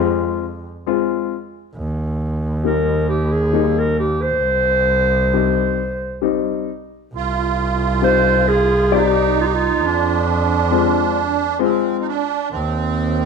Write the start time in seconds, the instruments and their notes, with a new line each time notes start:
Already playing: double bass F2, upright piano G#3 C4 F4
0.86 upright piano G#3 C4 F4
1.75 double bass D#2
2.64 upright piano G3 A#3 D#4, clarinet A#4
3.09 clarinet G4
3.32 clarinet G#4
3.53 upright piano G3 A#3 D#4
3.79 clarinet A#4
3.99 clarinet G4
4.22 clarinet C5
4.44 double bass C2
5.33 upright piano G3 C4 D#4
6.21 upright piano G3 C4 D#4
7.13 double bass C2, accordion F4
8.02 upright piano G3 C4 D#4, clarinet C5
8.48 clarinet G#4
8.91 upright piano G3 C4 D5, accordion D#4, clarinet G4
9.41 clarinet F4
9.46 clarinet G4
9.55 clarinet F4
9.82 double bass F2, accordion D4
10.71 upright piano G#3 C4 F4
11.59 upright piano G#3 C4 F4, accordion C4
12.01 accordion D#4
12.08 accordion D4
12.51 double bass D#2, accordion C4